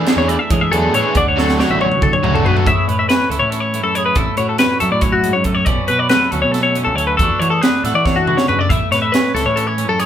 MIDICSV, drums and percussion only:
0, 0, Header, 1, 2, 480
1, 0, Start_track
1, 0, Tempo, 431655
1, 1275, Time_signature, 7, 3, 24, 8
1, 11183, End_track
2, 0, Start_track
2, 0, Title_t, "Drums"
2, 74, Note_on_c, 9, 42, 72
2, 82, Note_on_c, 9, 38, 94
2, 185, Note_off_c, 9, 42, 0
2, 194, Note_off_c, 9, 38, 0
2, 324, Note_on_c, 9, 42, 58
2, 435, Note_off_c, 9, 42, 0
2, 561, Note_on_c, 9, 42, 85
2, 562, Note_on_c, 9, 36, 96
2, 672, Note_off_c, 9, 42, 0
2, 673, Note_off_c, 9, 36, 0
2, 809, Note_on_c, 9, 42, 63
2, 920, Note_off_c, 9, 42, 0
2, 1048, Note_on_c, 9, 42, 63
2, 1159, Note_off_c, 9, 42, 0
2, 1278, Note_on_c, 9, 42, 80
2, 1284, Note_on_c, 9, 36, 90
2, 1389, Note_off_c, 9, 42, 0
2, 1395, Note_off_c, 9, 36, 0
2, 1538, Note_on_c, 9, 38, 57
2, 1649, Note_off_c, 9, 38, 0
2, 1658, Note_on_c, 9, 38, 50
2, 1769, Note_off_c, 9, 38, 0
2, 1778, Note_on_c, 9, 38, 59
2, 1889, Note_off_c, 9, 38, 0
2, 1889, Note_on_c, 9, 48, 53
2, 2000, Note_off_c, 9, 48, 0
2, 2012, Note_on_c, 9, 48, 62
2, 2123, Note_off_c, 9, 48, 0
2, 2130, Note_on_c, 9, 47, 65
2, 2242, Note_off_c, 9, 47, 0
2, 2247, Note_on_c, 9, 47, 73
2, 2248, Note_on_c, 9, 36, 101
2, 2358, Note_off_c, 9, 47, 0
2, 2359, Note_off_c, 9, 36, 0
2, 2371, Note_on_c, 9, 45, 69
2, 2482, Note_off_c, 9, 45, 0
2, 2491, Note_on_c, 9, 45, 77
2, 2602, Note_off_c, 9, 45, 0
2, 2620, Note_on_c, 9, 43, 83
2, 2731, Note_off_c, 9, 43, 0
2, 2736, Note_on_c, 9, 43, 76
2, 2847, Note_off_c, 9, 43, 0
2, 2855, Note_on_c, 9, 43, 72
2, 2963, Note_on_c, 9, 36, 102
2, 2966, Note_off_c, 9, 43, 0
2, 2968, Note_on_c, 9, 42, 67
2, 3075, Note_off_c, 9, 36, 0
2, 3079, Note_off_c, 9, 42, 0
2, 3212, Note_on_c, 9, 42, 52
2, 3323, Note_off_c, 9, 42, 0
2, 3442, Note_on_c, 9, 42, 74
2, 3451, Note_on_c, 9, 38, 93
2, 3553, Note_off_c, 9, 42, 0
2, 3562, Note_off_c, 9, 38, 0
2, 3687, Note_on_c, 9, 42, 58
2, 3798, Note_off_c, 9, 42, 0
2, 3916, Note_on_c, 9, 42, 68
2, 4028, Note_off_c, 9, 42, 0
2, 4157, Note_on_c, 9, 42, 60
2, 4268, Note_off_c, 9, 42, 0
2, 4395, Note_on_c, 9, 42, 55
2, 4506, Note_off_c, 9, 42, 0
2, 4620, Note_on_c, 9, 42, 76
2, 4624, Note_on_c, 9, 36, 103
2, 4731, Note_off_c, 9, 42, 0
2, 4736, Note_off_c, 9, 36, 0
2, 4859, Note_on_c, 9, 42, 58
2, 4971, Note_off_c, 9, 42, 0
2, 5098, Note_on_c, 9, 42, 78
2, 5107, Note_on_c, 9, 38, 96
2, 5209, Note_off_c, 9, 42, 0
2, 5218, Note_off_c, 9, 38, 0
2, 5341, Note_on_c, 9, 42, 57
2, 5452, Note_off_c, 9, 42, 0
2, 5575, Note_on_c, 9, 42, 72
2, 5582, Note_on_c, 9, 36, 95
2, 5686, Note_off_c, 9, 42, 0
2, 5694, Note_off_c, 9, 36, 0
2, 5824, Note_on_c, 9, 42, 59
2, 5935, Note_off_c, 9, 42, 0
2, 6052, Note_on_c, 9, 42, 55
2, 6062, Note_on_c, 9, 36, 63
2, 6163, Note_off_c, 9, 42, 0
2, 6173, Note_off_c, 9, 36, 0
2, 6294, Note_on_c, 9, 42, 74
2, 6302, Note_on_c, 9, 36, 89
2, 6405, Note_off_c, 9, 42, 0
2, 6414, Note_off_c, 9, 36, 0
2, 6538, Note_on_c, 9, 42, 55
2, 6649, Note_off_c, 9, 42, 0
2, 6777, Note_on_c, 9, 42, 67
2, 6786, Note_on_c, 9, 38, 96
2, 6888, Note_off_c, 9, 42, 0
2, 6897, Note_off_c, 9, 38, 0
2, 7027, Note_on_c, 9, 42, 47
2, 7138, Note_off_c, 9, 42, 0
2, 7274, Note_on_c, 9, 42, 64
2, 7282, Note_on_c, 9, 38, 31
2, 7385, Note_off_c, 9, 42, 0
2, 7394, Note_off_c, 9, 38, 0
2, 7511, Note_on_c, 9, 42, 51
2, 7622, Note_off_c, 9, 42, 0
2, 7764, Note_on_c, 9, 42, 59
2, 7875, Note_off_c, 9, 42, 0
2, 7998, Note_on_c, 9, 36, 93
2, 8003, Note_on_c, 9, 42, 74
2, 8110, Note_off_c, 9, 36, 0
2, 8114, Note_off_c, 9, 42, 0
2, 8248, Note_on_c, 9, 42, 53
2, 8359, Note_off_c, 9, 42, 0
2, 8481, Note_on_c, 9, 42, 70
2, 8490, Note_on_c, 9, 38, 96
2, 8592, Note_off_c, 9, 42, 0
2, 8601, Note_off_c, 9, 38, 0
2, 8725, Note_on_c, 9, 42, 56
2, 8734, Note_on_c, 9, 38, 31
2, 8837, Note_off_c, 9, 42, 0
2, 8845, Note_off_c, 9, 38, 0
2, 8958, Note_on_c, 9, 36, 90
2, 8965, Note_on_c, 9, 38, 52
2, 9069, Note_off_c, 9, 36, 0
2, 9076, Note_off_c, 9, 38, 0
2, 9201, Note_on_c, 9, 47, 61
2, 9312, Note_off_c, 9, 47, 0
2, 9319, Note_on_c, 9, 38, 65
2, 9430, Note_off_c, 9, 38, 0
2, 9442, Note_on_c, 9, 43, 76
2, 9553, Note_off_c, 9, 43, 0
2, 9676, Note_on_c, 9, 36, 90
2, 9686, Note_on_c, 9, 42, 78
2, 9787, Note_off_c, 9, 36, 0
2, 9797, Note_off_c, 9, 42, 0
2, 9923, Note_on_c, 9, 42, 57
2, 9931, Note_on_c, 9, 38, 30
2, 10034, Note_off_c, 9, 42, 0
2, 10043, Note_off_c, 9, 38, 0
2, 10162, Note_on_c, 9, 42, 77
2, 10171, Note_on_c, 9, 38, 92
2, 10273, Note_off_c, 9, 42, 0
2, 10282, Note_off_c, 9, 38, 0
2, 10414, Note_on_c, 9, 42, 53
2, 10423, Note_on_c, 9, 38, 32
2, 10525, Note_off_c, 9, 42, 0
2, 10534, Note_off_c, 9, 38, 0
2, 10644, Note_on_c, 9, 42, 67
2, 10755, Note_off_c, 9, 42, 0
2, 10877, Note_on_c, 9, 42, 55
2, 10988, Note_off_c, 9, 42, 0
2, 11115, Note_on_c, 9, 42, 56
2, 11183, Note_off_c, 9, 42, 0
2, 11183, End_track
0, 0, End_of_file